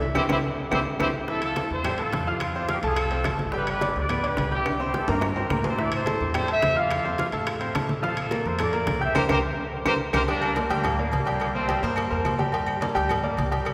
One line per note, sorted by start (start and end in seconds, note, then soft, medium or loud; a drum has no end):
0.00 0.13 C2 loud
0.00 0.13 E3 medium
0.00 0.13 E4 medium
0.00 0.13 E5 medium
0.00 high conga soft
0.15 0.26 C2 medium
0.15 0.24 C4 medium
0.15 0.24 E4 loud
0.15 0.23 E4 medium
0.15 0.24 G4 loud
0.15 0.23 G4 medium
0.15 0.23 C5 loud
0.15 low bongo medium
0.15 high conga loud
0.15 high timbale loud
0.15 claves medium
0.29 0.40 C2 medium
0.29 0.38 C4 medium
0.29 0.39 E4 medium
0.29 0.37 E4 loud
0.29 0.38 G4 medium
0.29 0.37 G4 medium
0.29 0.37 C5 medium
0.29 low bongo loud
0.29 high conga loud
0.29 high timbale loud
0.29 claves loud
0.71 0.82 C2 loud
0.71 0.80 C4 medium
0.71 0.80 E4 medium
0.71 0.79 E4 loud
0.71 0.80 G4 medium
0.71 0.79 G4 medium
0.71 0.79 C5 loud
0.71 low bongo medium
0.71 high conga loud
0.71 high timbale loud
0.71 claves loud
1.00 1.10 C2 loud
1.00 1.09 C4 medium
1.00 1.09 E4 loud
1.00 1.08 E4 loud
1.00 1.09 G4 loud
1.00 1.08 G4 loud
1.00 1.08 C5 medium
1.00 low bongo loud
1.00 high conga loud
1.00 high timbale loud
1.00 claves medium
1.28 1.51 E3 medium
1.28 1.52 E4 medium
1.28 1.43 E4 medium
1.28 1.42 A4 medium
1.28 1.52 E5 medium
1.28 high bongo medium
1.28 high conga soft
1.42 1.70 F4 medium
1.42 1.70 A4 medium
1.42 high conga soft
1.42 high timbale medium
1.42 claves medium
1.56 1.80 A3 medium
1.56 1.80 A4 medium
1.56 1.80 A5 medium
1.56 high bongo medium
1.56 high conga medium
1.56 high timbale medium
1.70 2.09 E2 medium
1.70 1.98 A4 medium
1.70 1.98 C5 medium
1.70 high conga soft
1.84 1.96 G3 medium
1.84 1.96 G4 medium
1.84 1.97 G5 medium
1.84 high bongo medium
1.84 high conga soft
1.84 low conga medium
1.84 high timbale loud
1.84 claves medium
1.98 2.21 A3 medium
1.98 2.28 F4 medium
1.98 2.22 A4 medium
1.98 2.28 A4 medium
1.98 2.22 A5 medium
1.98 high conga soft
1.98 high timbale medium
2.12 2.77 F2 medium
2.12 high bongo medium
2.12 low bongo medium
2.12 high conga medium
2.12 high timbale medium
2.27 2.41 D4 medium
2.27 2.50 F4 medium
2.27 2.41 F4 medium
2.27 2.50 F5 medium
2.27 2.50 F6 medium
2.27 high conga soft
2.40 2.55 C4 medium
2.40 2.55 F4 medium
2.40 high bongo medium
2.40 high conga soft
2.40 high timbale loud
2.40 claves medium
2.55 2.67 C4 medium
2.55 2.69 D4 medium
2.55 2.69 F4 medium
2.55 2.67 C5 medium
2.55 2.67 C6 medium
2.55 high bongo soft
2.55 high conga soft
2.69 2.78 D#4 medium
2.69 2.80 F4 medium
2.69 2.78 G4 medium
2.69 2.81 F5 medium
2.69 2.81 F6 medium
2.69 high bongo medium
2.69 high conga medium
2.69 high timbale medium
2.83 3.22 C2 loud
2.83 3.06 A3 medium
2.83 3.37 F4 medium
2.83 3.06 A4 medium
2.83 3.37 A4 medium
2.83 3.07 A5 medium
2.83 high bongo soft
2.83 high conga soft
2.83 high timbale medium
2.96 high bongo medium
2.96 high conga soft
2.96 high timbale loud
2.96 claves medium
3.11 3.23 C4 medium
3.11 3.23 C5 medium
3.11 3.23 C6 medium
3.11 high conga soft
3.11 high timbale medium
3.24 3.90 G1 medium
3.24 3.48 A3 medium
3.24 3.49 A4 medium
3.24 3.49 A5 medium
3.24 high bongo medium
3.24 low bongo medium
3.24 high conga medium
3.24 high timbale medium
3.24 low timbale medium
3.24 claves medium
3.39 high bongo soft
3.39 high conga medium
3.52 3.76 G3 medium
3.52 3.76 G4 medium
3.52 3.77 G5 medium
3.52 high bongo medium
3.52 high conga soft
3.56 3.68 G4 medium
3.56 3.68 B4 loud
3.67 3.95 G4 medium
3.67 3.95 B4 medium
3.67 high conga soft
3.67 high timbale medium
3.67 claves medium
3.81 4.05 D4 medium
3.81 4.05 D5 medium
3.81 4.05 D6 medium
3.81 high bongo medium
3.81 high conga medium
3.81 high timbale medium
3.96 4.35 D2 loud
3.96 4.25 B4 medium
3.96 4.25 D5 medium
3.96 high conga soft
4.09 4.21 B3 medium
4.09 4.21 B4 medium
4.09 4.21 B5 medium
4.09 high bongo medium
4.09 high conga soft
4.09 low conga medium
4.09 high timbale medium
4.09 claves medium
4.23 4.47 D4 medium
4.23 4.53 G4 medium
4.23 4.53 B4 loud
4.23 4.47 D5 medium
4.23 4.47 D6 medium
4.23 high conga soft
4.23 high timbale medium
4.37 5.03 C2 loud
4.37 high bongo medium
4.37 low bongo medium
4.37 high conga medium
4.37 high timbale medium
4.37 low timbale medium
4.51 4.79 E4 medium
4.51 4.75 G4 medium
4.51 4.79 G4 medium
4.51 4.75 G5 medium
4.51 4.75 G6 medium
4.51 high conga soft
4.66 high bongo medium
4.66 high conga soft
4.66 high timbale medium
4.66 claves medium
4.80 4.91 C4 medium
4.80 4.95 E4 medium
4.80 4.95 G4 medium
4.80 4.92 C5 medium
4.80 4.92 C6 medium
4.80 high bongo soft
4.80 high conga soft
4.94 5.09 E4 medium
4.94 5.06 G4 medium
4.94 5.10 A4 medium
4.94 5.06 G5 medium
4.94 5.06 G6 medium
4.94 high bongo medium
4.94 high conga medium
5.08 5.48 G2 medium
5.08 5.31 A#3 medium
5.08 5.65 G4 medium
5.08 5.31 A#4 medium
5.08 5.66 A#4 medium
5.08 5.31 A#5 medium
5.08 high bongo soft
5.08 high conga soft
5.08 high timbale loud
5.21 high bongo medium
5.21 high conga soft
5.21 low timbale loud
5.21 claves medium
5.36 5.48 C4 medium
5.36 5.48 C5 medium
5.36 5.48 C6 medium
5.36 high conga soft
5.36 low timbale medium
5.50 6.15 A2 loud
5.50 5.73 A#3 medium
5.50 5.73 A#4 medium
5.50 5.74 A#5 medium
5.50 high bongo medium
5.50 low bongo medium
5.50 high conga loud
5.50 claves medium
5.64 5.79 A4 medium
5.64 5.79 C5 medium
5.64 high bongo soft
5.64 high conga medium
5.64 low timbale medium
5.78 6.01 E3 medium
5.78 6.02 E4 medium
5.78 5.94 A4 medium
5.78 5.94 D5 medium
5.78 6.02 E5 medium
5.78 high bongo medium
5.78 high conga soft
5.92 6.33 A4 medium
5.92 6.33 C5 loud
5.92 high conga soft
5.92 high timbale loud
5.92 claves medium
6.06 6.29 A3 medium
6.06 6.29 A4 medium
6.06 6.30 A5 medium
6.06 high bongo medium
6.06 high conga loud
6.06 high timbale medium
6.20 6.60 E2 medium
6.20 high conga soft
6.34 6.46 G3 medium
6.34 6.46 G4 medium
6.34 6.49 A4 medium
6.34 6.49 C5 loud
6.34 6.46 G5 medium
6.34 high bongo medium
6.34 high conga soft
6.34 low conga medium
6.34 high timbale loud
6.34 claves medium
6.48 6.71 A3 medium
6.48 6.71 A4 medium
6.48 6.76 C5 medium
6.48 6.76 E5 loud
6.48 6.72 A5 medium
6.48 high conga soft
6.48 high timbale medium
6.62 7.28 F2 medium
6.62 high bongo medium
6.62 low bongo medium
6.62 high conga loud
6.62 high timbale medium
6.76 6.99 F4 medium
6.76 7.31 D5 medium
6.76 7.00 F5 medium
6.76 7.30 F5 medium
6.76 7.00 F6 medium
6.76 high conga soft
6.91 high bongo medium
6.91 high conga soft
6.91 high timbale medium
6.91 claves medium
7.05 7.16 C4 medium
7.05 7.17 C5 medium
7.05 7.17 C6 medium
7.05 high bongo soft
7.05 high conga soft
7.18 7.30 F4 medium
7.18 7.30 F5 medium
7.18 7.31 F6 medium
7.18 high bongo medium
7.18 high conga medium
7.18 high timbale medium
7.32 7.72 A2 medium
7.32 7.56 A3 medium
7.32 7.56 A4 medium
7.32 7.56 A5 medium
7.32 high bongo soft
7.32 high conga soft
7.32 high timbale medium
7.47 high bongo medium
7.47 high conga soft
7.47 high timbale loud
7.47 claves medium
7.61 7.72 C4 medium
7.61 7.73 C5 medium
7.61 7.73 C6 medium
7.61 high conga soft
7.61 high timbale medium
7.74 8.40 A#2 medium
7.74 7.98 A3 medium
7.74 7.98 A4 medium
7.74 7.98 A5 medium
7.74 high bongo medium
7.74 low bongo loud
7.74 high conga medium
7.74 high timbale medium
7.74 claves medium
7.89 high bongo soft
7.89 high conga medium
8.02 8.26 F3 medium
8.02 8.26 F4 medium
8.02 8.18 F4 medium
8.02 8.26 F5 medium
8.02 high bongo medium
8.02 high conga soft
8.06 8.18 A4 medium
8.17 8.44 F4 medium
8.17 8.45 A4 loud
8.17 high conga soft
8.17 high timbale medium
8.17 claves medium
8.31 8.54 A#3 medium
8.31 8.54 A#4 medium
8.31 8.54 A#5 medium
8.31 high bongo medium
8.31 high conga medium
8.31 high timbale medium
8.45 8.85 F2 loud
8.45 8.61 A4 medium
8.45 8.61 C5 medium
8.45 high conga soft
8.59 8.71 A3 medium
8.59 8.71 A4 medium
8.59 9.03 A#4 medium
8.59 9.03 D5 loud
8.59 8.71 A5 medium
8.59 high bongo medium
8.59 high conga soft
8.59 low conga medium
8.59 high timbale loud
8.59 claves medium
8.73 8.96 A#3 medium
8.73 8.97 A#4 medium
8.73 8.97 A#5 medium
8.73 high conga soft
8.73 high timbale medium
8.87 9.14 C2 loud
8.87 high bongo medium
8.87 low bongo medium
8.87 high conga medium
8.87 high timbale medium
9.01 9.13 G4 medium
9.01 9.15 C5 medium
9.01 9.16 E5 loud
9.01 9.13 G5 medium
9.01 9.13 G6 medium
9.01 high conga soft
9.15 9.26 C2 loud
9.15 9.24 G4 loud
9.15 9.23 G4 loud
9.15 9.24 A#4 loud
9.15 9.23 A#4 loud
9.15 9.24 C5 loud
9.15 9.23 C5 medium
9.15 low bongo medium
9.15 high conga loud
9.15 high timbale loud
9.15 claves loud
9.29 9.40 C2 loud
9.29 9.38 G4 loud
9.29 9.38 A#4 loud
9.29 9.38 C5 medium
9.29 9.38 C5 loud
9.29 low bongo loud
9.29 high conga loud
9.29 high timbale loud
9.29 claves medium
9.85 9.96 C2 loud
9.85 9.95 G4 medium
9.85 9.93 G4 loud
9.85 9.95 A#4 loud
9.85 9.93 A#4 loud
9.85 9.95 C5 loud
9.85 9.93 C5 loud
9.85 low bongo loud
9.85 high conga loud
9.85 high timbale loud
9.85 claves loud
10.13 10.24 C2 loud
10.13 10.23 G4 medium
10.13 10.21 G4 medium
10.13 10.23 A#4 loud
10.13 10.21 A#4 loud
10.13 10.23 C5 loud
10.13 10.21 C5 loud
10.13 low bongo loud
10.13 high conga loud
10.13 high timbale medium
10.13 claves loud
10.27 10.51 G3 medium
10.27 10.56 A#3 medium
10.27 10.55 D4 loud
10.27 10.51 G4 medium
10.27 10.52 G5 medium
10.27 cowbell loud
10.27 high conga soft
10.27 low agogo medium
10.42 high conga soft
10.42 low agogo loud
10.42 claves medium
10.55 10.68 A#3 medium
10.55 10.68 A#4 medium
10.55 10.68 D5 medium
10.55 cowbell medium
10.55 high conga medium
10.55 low agogo medium
10.70 11.09 D2 loud
10.70 10.93 G3 loud
10.70 11.38 G3 medium
10.70 11.37 A#3 medium
10.70 10.93 G4 medium
10.70 10.94 G5 loud
10.70 cowbell medium
10.70 high conga soft
10.70 low agogo medium
10.84 cowbell loud
10.84 high conga soft
10.84 low conga medium
10.84 low agogo loud
10.84 claves medium
10.98 11.22 A#3 medium
10.98 11.22 A#4 medium
10.98 11.22 D5 medium
10.98 high conga soft
11.12 11.77 C2 loud
11.12 cowbell medium
11.12 high conga loud
11.12 low agogo medium
11.25 11.49 G3 medium
11.25 11.50 G4 medium
11.25 11.50 G5 medium
11.25 cowbell medium
11.25 high conga soft
11.25 low agogo medium
11.40 11.49 G3 medium
11.40 11.48 A#3 medium
11.40 cowbell medium
11.40 high conga soft
11.40 low agogo loud
11.40 claves medium
11.54 11.82 A3 medium
11.54 11.66 A#3 medium
11.54 11.81 C4 medium
11.54 11.66 A#4 medium
11.54 11.67 C5 medium
11.54 high conga soft
11.68 11.80 G3 medium
11.68 11.80 G4 medium
11.68 11.80 G5 medium
11.68 cowbell medium
11.68 high conga loud
11.68 low agogo medium
11.82 12.09 G2 loud
11.82 12.06 A#3 medium
11.82 12.06 A#4 medium
11.82 12.06 C5 medium
11.82 cowbell medium
11.82 high conga soft
11.96 cowbell loud
11.96 high conga soft
11.96 low agogo loud
11.96 claves medium
12.10 12.24 F2 medium
12.10 12.34 A#3 medium
12.10 12.34 A#4 medium
12.10 12.34 C5 medium
12.10 high conga soft
12.25 12.90 G2 loud
12.25 cowbell medium
12.25 high conga medium
12.25 low timbale medium
12.25 low agogo loud
12.25 claves medium
12.38 12.50 G3 medium
12.38 12.51 G4 medium
12.38 12.51 G5 medium
12.38 high conga medium
12.38 low agogo medium
12.52 12.76 G3 medium
12.52 12.76 G4 medium
12.52 12.77 G5 medium
12.52 cowbell loud
12.52 high conga soft
12.52 low agogo medium
12.66 high conga soft
12.66 low agogo loud
12.66 claves medium
12.81 12.93 A#3 medium
12.81 12.93 A#4 medium
12.81 12.93 D5 medium
12.81 cowbell medium
12.81 high conga loud
12.81 low agogo medium
12.95 13.35 D2 medium
12.95 13.18 G3 medium
12.95 13.18 G4 loud
12.95 13.18 G5 medium
12.95 cowbell medium
12.95 high conga soft
12.95 low agogo medium
13.09 cowbell loud
13.09 high conga soft
13.09 low conga medium
13.09 low agogo loud
13.09 claves medium
13.23 13.47 A#3 medium
13.23 13.47 A#4 medium
13.23 13.47 D5 medium
13.23 high conga soft
13.37 13.74 C2 loud
13.37 cowbell medium
13.37 high conga medium
13.37 low agogo medium
13.51 13.74 G3 medium
13.51 13.74 G4 medium
13.51 13.74 G5 medium
13.51 cowbell medium
13.51 high conga soft
13.51 low agogo medium
13.65 cowbell loud
13.65 high conga soft
13.65 low agogo medium
13.65 claves medium